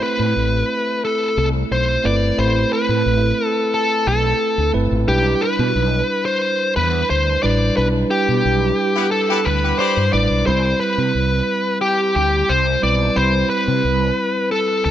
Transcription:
Already playing: tine electric piano A3 C4 E4 B5
0.03 lead electric guitar B4
0.19 fretless electric bass A2
0.36 fretless electric bass A1
1.05 lead electric guitar A4
1.37 fretless electric bass C2, lead electric guitar A4
1.71 fretless electric bass B1, lead electric guitar C5
2.04 fretless electric bass G1, tine electric piano A3 C4 E4 B4, lead electric guitar D5
2.38 fretless electric bass A1, tine electric piano A3 C4 E4 B5, lead electric guitar C5
2.73 lead electric guitar B4
2.88 fretless electric bass A2
3.06 fretless electric bass A1
3.46 lead electric guitar A4
3.74 lead electric guitar A4
4.07 fretless electric bass B1, lead electric guitar A4
4.58 fretless electric bass D2
4.73 fretless electric bass G1, tine electric piano A3 C4 E4 B4
4.91 fretless electric bass A1
5.07 fretless electric bass B1, tine electric piano G3 D4 E4 B4, lead electric guitar G4
5.41 lead electric guitar B4
5.59 fretless electric bass B2
5.75 fretless electric bass B1
6.26 lead electric guitar C5
6.76 fretless electric bass E2, lead electric guitar B4
7.10 fretless electric bass D2, lead electric guitar C5
7.43 fretless electric bass A1, tine electric piano G3 D4 E4 B4, lead electric guitar D5
7.77 fretless electric bass B1, tine electric piano G3 D4 E4 B4, lead electric guitar B4
8.11 lead electric guitar G4
8.28 fretless electric bass B2
8.45 fretless electric bass B1
8.96 horn section B3 E4 G4 B4
9.11 lead electric guitar A4
9.29 horn section B3 E4 G4 B4
9.45 fretless electric bass D2, lead electric guitar B4
9.63 horn section B3 E4 G4 B4
9.79 horn section G4 B4 D5 B5, lead electric guitar C5
9.97 fretless electric bass G2
10.12 fretless electric bass A1, tine electric piano G3 D4 E4 B4, lead electric guitar D5
10.30 fretless electric bass B1
10.46 fretless electric bass C2, tine electric piano G3 C4 E4 B5, lead electric guitar C5
10.80 lead electric guitar B4
10.98 fretless electric bass C3
11.15 fretless electric bass C2
11.81 lead electric guitar G4
12.16 fretless electric bass D2, lead electric guitar G4
12.49 fretless electric bass C2, lead electric guitar C5
12.82 fretless electric bass B1, tine electric piano G3 C4 E4 B4, lead electric guitar D5
13.15 fretless electric bass C2, tine electric piano G3 C4 E4 B5, lead electric guitar C5
13.50 lead electric guitar B4
13.67 fretless electric bass C3
13.84 fretless electric bass C2
14.51 lead electric guitar A4
14.85 fretless electric bass D2, lead electric guitar A4

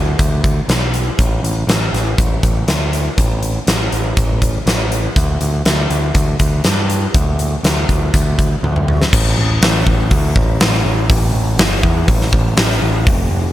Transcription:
Already playing: picked electric bass D2
0.19 picked electric bass D2, kick, closed hi-hat
0.44 kick, closed hi-hat
0.68 picked electric bass B1, snare, closed hi-hat
0.94 closed hi-hat
1.19 picked electric bass A1, kick, closed hi-hat
1.43 picked electric bass A1, closed hi-hat
1.67 picked electric bass A1, snare, closed hi-hat
1.93 picked electric bass A1, snare, closed hi-hat
2.18 picked electric bass A1, kick, closed hi-hat
2.43 picked electric bass A1, kick, closed hi-hat
2.67 picked electric bass D2, snare, closed hi-hat
2.93 closed hi-hat
3.18 picked electric bass A1, kick, closed hi-hat
3.43 closed hi-hat
3.67 picked electric bass A1, snare, closed hi-hat
3.92 picked electric bass A1, closed hi-hat
4.17 picked electric bass A1, kick, closed hi-hat
4.42 kick, closed hi-hat
4.66 picked electric bass A1, snare, closed hi-hat
4.92 closed hi-hat
5.16 picked electric bass D2, kick, closed hi-hat
5.41 picked electric bass D2, closed hi-hat
5.65 picked electric bass D2, snare, closed hi-hat
5.90 picked electric bass D2, closed hi-hat
6.14 picked electric bass D2, kick, closed hi-hat
6.40 picked electric bass D2, kick, closed hi-hat
6.64 picked electric bass G2, snare, closed hi-hat
6.90 closed hi-hat
7.14 picked electric bass D2, kick, closed hi-hat
7.39 closed hi-hat
7.63 picked electric bass D2, snare, closed hi-hat
7.89 picked electric bass D2, kick, closed hi-hat
8.14 picked electric bass D2, kick, closed hi-hat
8.39 kick, closed hi-hat
8.63 picked electric bass D2, high tom
8.76 mid tom
8.88 mid tom
9.02 snare
9.13 picked electric bass A1, kick, crash
9.38 picked electric bass A1
9.61 picked electric bass A1, snare, open hi-hat
9.86 picked electric bass A1, kick
10.11 picked electric bass D2, kick, open hi-hat
10.36 picked electric bass A1, kick
10.60 picked electric bass A1, snare, open hi-hat
10.73 snare
10.85 picked electric bass A1
11.10 picked electric bass A1, kick, open hi-hat
11.33 picked electric bass A1
11.57 picked electric bass G1, snare, open hi-hat
11.83 picked electric bass E2, kick
12.08 picked electric bass A1, kick, open hi-hat
12.21 snare
12.32 picked electric bass A1, kick
12.57 picked electric bass A1, snare, open hi-hat
12.71 snare
12.82 picked electric bass A1
13.07 picked electric bass F1, kick, open hi-hat
13.31 picked electric bass F1

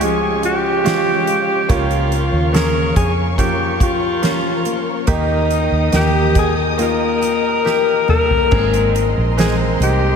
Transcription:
Already playing: fingered electric bass C#2, steel-string acoustic guitar C#3 G#3 C#4 G#4, grand piano C#3 D#4, string section G#3 C#5 F5 C#6
0.00 steel-string acoustic guitar F3, grand piano G#3 C#4 F4, alto saxophone G#4, closed hi-hat
0.43 steel-string acoustic guitar F4, alto saxophone G4, closed hi-hat
0.84 grand piano G#3 C#4 F4, steel-string acoustic guitar C#4, snare, closed hi-hat
1.27 steel-string acoustic guitar G#3, closed hi-hat
1.69 fingered electric bass C#2, steel-string acoustic guitar C#3, grand piano C#3 A#3 C#4 F4, alto saxophone F4, string section A#4 C#6, kick, closed hi-hat
1.91 closed hi-hat
2.12 steel-string acoustic guitar C#4, closed hi-hat
2.32 fingered electric bass D#2
2.53 grand piano A#3 C#4 G#4, steel-string acoustic guitar A#3, alto saxophone A#4, snare, closed hi-hat
2.96 fingered electric bass F2, steel-string acoustic guitar C#4, alto saxophone G#4, kick, closed hi-hat
3.38 steel-string acoustic guitar F3, grand piano A#3 C#4 F4, alto saxophone G4, kick, closed hi-hat
3.80 steel-string acoustic guitar F4, alto saxophone F4, kick, closed hi-hat
4.22 grand piano A#3 C#4 F4, steel-string acoustic guitar C#4, snare, closed hi-hat
4.65 steel-string acoustic guitar A#3, closed hi-hat
5.07 fingered electric bass D#2, steel-string acoustic guitar D#3, grand piano D#3 A#3 D#4 G4, string section D#5 G5 D#6, kick, closed hi-hat
5.11 alto saxophone D#4
5.50 steel-string acoustic guitar D#4, closed hi-hat
5.72 fingered electric bass D#2
5.92 fingered electric bass D#2, grand piano A#3 D#4 G5, steel-string acoustic guitar A#3, alto saxophone G4, snare, closed hi-hat
6.35 steel-string acoustic guitar D#4, alto saxophone G#4, kick, closed hi-hat
6.78 grand piano A#3 D#4 F4, steel-string acoustic guitar A#3, closed hi-hat
6.82 alto saxophone A#4
7.21 steel-string acoustic guitar G4, closed hi-hat
7.65 grand piano A#3 D#4 G4, snare
8.08 steel-string acoustic guitar A#3, alto saxophone A#4, mid tom
8.30 floor tom
8.51 fingered electric bass G#1, grand piano G#2 A#3 C4 G#4, steel-string acoustic guitar G#3, string section A#4 D#5 A#5 C6, kick, crash
8.74 closed hi-hat
8.95 steel-string acoustic guitar D#4, closed hi-hat
9.17 fingered electric bass A#1
9.37 grand piano G#3 A#3 C4, steel-string acoustic guitar C4, alto saxophone G#4, snare, closed hi-hat
9.80 fingered electric bass C2, steel-string acoustic guitar D#4, alto saxophone G4, closed hi-hat

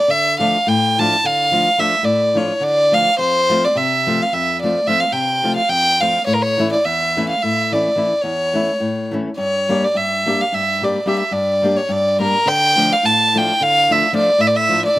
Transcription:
Already playing: violin D5
0.08 nylon-string guitar D3, violin E5
0.39 nylon-string guitar F3 A3 D4 F4, violin F5
0.67 nylon-string guitar A2, violin G5
0.99 nylon-string guitar F3 A3 D4 F4, violin A5
1.24 nylon-string guitar D3, violin F5
1.52 nylon-string guitar F3 A3 D4 F4
1.78 nylon-string guitar F3 A3 D4 F4, violin E5
2.03 nylon-string guitar A2, violin D5
2.35 nylon-string guitar F3 A3 D4 F4, violin C#5
2.60 nylon-string guitar D3, violin D5
2.92 nylon-string guitar F3 A3 D4 F4, violin F5
3.19 nylon-string guitar F2, violin C5
3.49 nylon-string guitar F3 A3 C4 F4
3.64 violin D5
3.75 nylon-string guitar C3, violin E5
4.07 nylon-string guitar F3 A3 C4 F4
4.22 violin F5
4.33 nylon-string guitar F2, violin E5
4.63 nylon-string guitar F3 A3 C4 F4, violin D5
4.87 nylon-string guitar F3 A3 C4 F4, violin E5
5.00 violin F5
5.12 nylon-string guitar C3, violin G5
5.42 nylon-string guitar F3 A3 C4 F4
5.56 violin F5
5.69 nylon-string guitar F2, violin G5
6.00 nylon-string guitar F3 A3 C4 F4, violin F5
6.26 nylon-string guitar A2, violin C#5
6.33 violin A#4
6.42 violin C#5
6.58 nylon-string guitar E3 A3 C#4 E4
6.73 violin D5
6.85 nylon-string guitar E2, violin E5
7.17 nylon-string guitar E3 A3 C#4 E4
7.29 violin F5
7.42 nylon-string guitar A2, violin E5
7.72 nylon-string guitar E3 A3 C#4 E4, violin D5
7.96 nylon-string guitar E3 A3 C#4 E4
8.21 nylon-string guitar E2, violin C#5
8.53 nylon-string guitar E3 A3 C#4 E4
8.80 nylon-string guitar A2
9.11 nylon-string guitar E3 A3 C#4 E4
9.37 nylon-string guitar G2, violin C#5
9.69 nylon-string guitar G3 A#3 D4 G4
9.84 violin D5
9.94 nylon-string guitar G2, violin E5
10.26 nylon-string guitar G3 A#3 D4 G4
10.41 violin F5
10.53 nylon-string guitar G2, violin E5
10.81 nylon-string guitar G3 A#3 D4 G4, violin D5
11.06 nylon-string guitar G3 A#3 D4 G4, violin E5
11.19 violin E5
11.31 nylon-string guitar G2, violin D5
11.62 nylon-string guitar G3 A#3 D4 G4
11.77 violin C#5
11.89 nylon-string guitar G2, violin D5
12.19 nylon-string guitar G3 A#3 D4 G4, violin A#4
12.46 nylon-string guitar D3, violin G5
12.76 nylon-string guitar F3 A3 D4 F4
12.92 violin F5
13.03 nylon-string guitar A2, violin A5
13.34 nylon-string guitar F3 A3 D4 F4, violin G5
13.61 nylon-string guitar D3, violin F5
13.89 nylon-string guitar F3 A3 D4 F4, violin E5
14.13 nylon-string guitar F3 A3 D4 F4
14.17 violin D5
14.38 nylon-string guitar A2, violin E5
14.47 violin D5
14.56 violin E5
14.69 nylon-string guitar F3 A3 D4 F4
14.86 violin D5
14.96 nylon-string guitar D3

